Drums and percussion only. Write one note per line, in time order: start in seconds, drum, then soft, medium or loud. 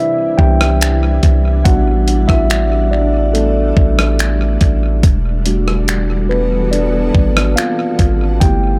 0.39 kick loud
0.61 cross-stick loud
0.81 finger snap loud
0.81 closed hi-hat medium
1.23 kick medium
1.23 closed hi-hat medium
1.65 kick loud
1.65 closed hi-hat medium
2.08 closed hi-hat medium
2.29 kick medium
2.29 cross-stick medium
2.50 finger snap loud
2.50 closed hi-hat medium
3.35 closed hi-hat medium
3.77 kick loud
3.99 cross-stick loud
4.19 finger snap loud
4.19 closed hi-hat medium
4.61 kick medium
4.61 closed hi-hat medium
5.03 kick loud
5.03 closed hi-hat medium
5.46 closed hi-hat medium
5.68 cross-stick medium
5.88 finger snap loud
5.88 closed hi-hat medium
6.73 closed hi-hat medium
7.15 kick loud
7.37 cross-stick loud
7.57 finger snap loud
7.57 closed hi-hat medium
7.99 kick medium
7.99 closed hi-hat medium
8.41 kick loud
8.41 closed hi-hat medium